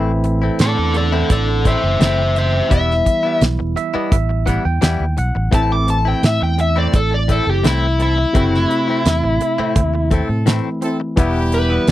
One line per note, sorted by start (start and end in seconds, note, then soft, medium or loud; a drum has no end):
0.00 0.48 A1 medium
0.00 0.10 A2 medium
0.00 2.66 E3 medium
0.00 0.11 A3 medium
0.00 2.66 A3 medium
0.00 0.11 C4 medium
0.00 2.67 C4 medium
0.00 0.11 E4 loud
0.00 2.68 E4 medium
0.24 muted clean electric guitar stroke soft
0.24 closed hi-hat medium
0.42 0.59 A3 soft
0.42 0.59 C4 soft
0.42 0.59 E4 soft
0.59 0.75 A2 loud
0.59 0.96 A4 medium
0.59 0.95 D5 loud
0.59 muted clean electric guitar stroke soft
0.59 snare loud
0.59 closed hi-hat medium
0.77 1.22 E2 medium
0.77 muted clean electric guitar stroke soft
0.94 1.29 A4 medium
0.94 1.30 D5 medium
0.94 muted clean electric guitar stroke soft
0.94 closed hi-hat medium
1.12 1.35 A2 medium
1.12 1.34 A3 medium
1.12 1.34 C4 medium
1.12 1.33 E4 medium
1.30 1.75 A1 medium
1.30 1.64 A4 medium
1.30 1.65 D5 medium
1.30 kick loud
1.30 closed hi-hat medium
1.48 muted clean electric guitar stroke soft
1.64 1.83 A2 medium
1.64 1.83 A3 medium
1.64 1.83 C4 medium
1.64 1.82 E4 medium
1.64 1.99 C5 medium
1.64 2.01 E5 medium
1.64 kick medium
1.64 closed hi-hat medium
1.83 1.98 F#1 medium
1.83 muted clean electric guitar stroke soft
2.00 2.60 F#1 loud
2.00 2.22 A2 medium
2.00 2.22 A3 medium
2.00 2.22 C4 medium
2.00 2.23 E4 medium
2.00 2.34 C5 medium
2.00 2.36 E5 medium
2.00 snare loud
2.00 closed hi-hat medium
2.35 2.70 C5 medium
2.35 2.72 E5 medium
2.35 muted clean electric guitar stroke soft
2.35 closed hi-hat medium
2.53 muted clean electric guitar stroke soft
2.69 3.01 E1 medium
2.69 5.48 E3 medium
2.69 2.92 E3 medium
2.69 5.49 G3 medium
2.69 2.92 G3 medium
2.69 5.49 B3 medium
2.69 2.93 B3 medium
2.69 2.93 E4 medium
2.69 5.50 E4 medium
2.69 kick loud
2.69 closed hi-hat medium
2.74 3.41 E5 loud
2.91 snare soft
3.05 muted clean electric guitar stroke soft
3.05 kick medium
3.05 closed hi-hat medium
3.23 3.40 G3 soft
3.23 3.41 B3 soft
3.23 3.41 E4 medium
3.41 3.57 B1 loud
3.41 muted clean electric guitar stroke soft
3.41 snare loud
3.41 closed hi-hat medium
3.59 3.74 E1 medium
3.59 muted clean electric guitar stroke soft
3.76 3.93 E5 medium
3.76 muted clean electric guitar stroke soft
3.76 closed hi-hat medium
3.94 4.16 E3 medium
3.94 4.16 G3 medium
3.94 4.16 B3 medium
3.94 4.15 E4 medium
3.94 4.11 D#5 medium
3.94 muted fingered electric bass stroke soft
4.12 4.57 A1 medium
4.12 4.45 E5 medium
4.12 kick loud
4.12 closed hi-hat medium
4.29 muted clean electric guitar stroke soft
4.46 4.65 E3 medium
4.46 4.65 G3 medium
4.46 4.64 B3 medium
4.46 4.64 E4 medium
4.46 4.64 F#5 medium
4.46 kick medium
4.46 closed hi-hat medium
4.65 4.80 E2 loud
4.65 4.81 G5 medium
4.65 muted clean electric guitar stroke soft
4.82 4.99 E2 medium
4.82 5.04 E3 medium
4.82 5.04 G3 medium
4.82 5.04 B3 medium
4.82 5.05 E4 medium
4.82 5.15 G5 medium
4.82 snare loud
4.82 closed hi-hat medium
5.00 5.16 D#2 medium
5.17 5.34 B1 medium
5.17 5.51 F#5 medium
5.17 muted clean electric guitar stroke soft
5.17 closed hi-hat medium
5.35 5.51 A1 medium
5.35 muted clean electric guitar stroke soft
5.51 5.74 A2 medium
5.51 8.30 E3 medium
5.51 5.74 A3 medium
5.51 8.31 A3 medium
5.51 6.23 C4 medium
5.51 5.75 C4 medium
5.51 8.31 C4 medium
5.51 6.23 E4 medium
5.51 5.75 E4 medium
5.51 6.23 A4 medium
5.51 5.71 A5 loud
5.51 kick loud
5.51 closed hi-hat medium
5.55 8.32 E4 medium
5.72 5.88 D6 medium
5.88 6.08 A5 medium
5.88 muted clean electric guitar stroke soft
5.88 closed hi-hat medium
6.05 6.22 A3 soft
6.05 6.22 C4 soft
6.05 6.23 E4 soft
6.05 6.25 G5 medium
6.23 6.38 A2 medium
6.23 6.42 E5 medium
6.23 muted clean electric guitar stroke soft
6.23 snare loud
6.23 closed hi-hat medium
6.41 6.86 E2 medium
6.41 6.59 G5 medium
6.41 muted clean electric guitar stroke soft
6.58 6.77 E5 medium
6.58 muted clean electric guitar stroke soft
6.58 closed hi-hat medium
6.76 6.98 A2 medium
6.76 6.98 A3 medium
6.76 6.98 C4 medium
6.76 6.97 E4 medium
6.76 6.94 D5 medium
6.93 7.39 A1 medium
6.93 7.12 A4 medium
6.93 kick loud
6.93 closed hi-hat medium
7.11 7.30 D5 medium
7.11 muted clean electric guitar stroke soft
7.28 7.47 A2 medium
7.28 7.47 A3 medium
7.28 7.64 C4 medium
7.28 7.46 C4 medium
7.28 7.64 E4 medium
7.28 7.45 E4 medium
7.28 7.64 A4 medium
7.28 7.50 A4 medium
7.28 kick medium
7.28 closed hi-hat medium
7.46 7.62 F#1 medium
7.46 7.65 G4 medium
7.46 muted clean electric guitar stroke soft
7.63 8.24 C2 medium
7.63 7.85 A2 medium
7.63 7.86 A3 medium
7.63 7.86 C4 medium
7.63 7.87 E4 medium
7.63 8.00 E4 medium
7.63 snare loud
7.63 closed hi-hat medium
7.98 8.14 C4 medium
7.98 8.15 E4 medium
7.98 8.15 A4 medium
7.98 muted clean electric guitar stroke soft
7.98 closed hi-hat medium
8.02 10.09 E4 loud
8.17 muted clean electric guitar stroke soft
8.33 8.65 F#1 medium
8.33 8.56 A2 medium
8.33 10.42 C3 medium
8.33 10.42 A3 medium
8.33 8.57 A3 medium
8.33 9.05 C4 medium
8.33 10.43 C4 medium
8.33 8.57 C4 medium
8.33 9.05 E4 medium
8.33 8.57 E4 medium
8.33 10.44 E4 medium
8.33 9.06 F#4 medium
8.33 kick loud
8.33 closed hi-hat medium
8.54 snare soft
8.70 muted clean electric guitar stroke soft
8.70 closed hi-hat medium
8.88 9.05 A3 soft
8.88 9.05 C4 medium
8.88 9.05 E4 medium
9.05 9.21 E2 loud
9.05 muted clean electric guitar stroke soft
9.05 snare loud
9.05 closed hi-hat medium
9.24 9.38 A1 medium
9.24 muted clean electric guitar stroke medium
9.41 muted clean electric guitar stroke soft
9.41 closed hi-hat medium
9.58 9.81 A2 medium
9.58 9.80 A3 medium
9.58 9.80 C4 medium
9.58 9.80 E4 medium
9.58 muted fingered electric bass stroke soft
9.76 10.21 D#2 medium
9.76 kick loud
9.76 closed hi-hat medium
9.94 muted clean electric guitar stroke soft
10.11 10.29 A2 medium
10.11 10.30 A3 medium
10.11 10.47 C4 medium
10.11 10.29 C4 medium
10.11 10.47 E4 medium
10.11 10.28 E4 medium
10.11 10.47 A4 medium
10.11 kick medium
10.11 closed hi-hat medium
10.29 10.59 A2 loud
10.29 muted clean electric guitar stroke soft
10.46 10.68 A2 medium
10.46 11.15 E3 medium
10.46 11.17 A3 soft
10.46 10.68 A3 medium
10.46 11.17 C4 soft
10.46 10.69 C4 loud
10.46 11.18 E4 medium
10.46 10.69 E4 medium
10.46 snare loud
10.46 closed hi-hat medium
10.81 10.98 C4 medium
10.81 10.98 E4 medium
10.81 10.99 A4 medium
10.81 muted clean electric guitar stroke soft
10.81 closed hi-hat medium
11.00 muted clean electric guitar stroke soft
11.16 11.77 E1 loud
11.16 11.91 E3 medium
11.16 11.39 E3 medium
11.16 11.91 G3 medium
11.16 11.39 G3 medium
11.16 11.88 B3 medium
11.16 11.91 B3 medium
11.16 11.39 B3 medium
11.16 11.88 E4 medium
11.16 11.40 E4 loud
11.16 11.91 E4 medium
11.16 11.88 G4 loud
11.16 kick loud
11.16 closed hi-hat medium
11.52 11.88 B4 loud
11.52 muted clean electric guitar stroke soft
11.52 closed hi-hat medium
11.70 11.87 G3 soft
11.70 11.88 B3 soft
11.70 11.87 E4 soft
11.87 11.91 E2 loud
11.87 muted clean electric guitar stroke soft
11.87 snare loud
11.87 closed hi-hat medium